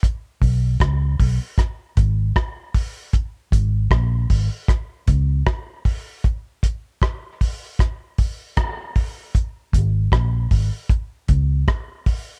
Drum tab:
HH |popopx-o|px-opx-o|px-opopo|px-opx-o|
SD |--r-r-r-|--r-r-r-|--r-r-r-|--r---r-|
BD |oooooooo|oooooooo|oooooooo|oooooooo|